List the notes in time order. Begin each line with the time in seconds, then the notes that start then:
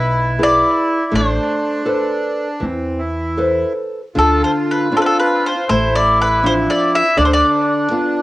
Already playing: B1 B2 E4 B4
0.39 E4 G#4 B4
0.43 D5
1.11 A1 A3 D4 C5
1.85 A4 B4 C5
2.60 E2 E3 C4
2.99 E4
3.37 A4 B4 C5
4.15 D2 D3 F4 A4
4.44 C5
4.71 B4
4.91 C4 D4 F4
4.97 A4
5.02 B4
5.06 A4
5.20 B4
5.46 C5
5.69 A1 A3 E4 C5
5.95 D5
6.22 B4
6.43 F3 C4 D4 C5
6.70 D5
6.95 E5
7.17 D2 D3 D4 D5
7.25 C5
7.33 D5
7.91 B3 D4 F4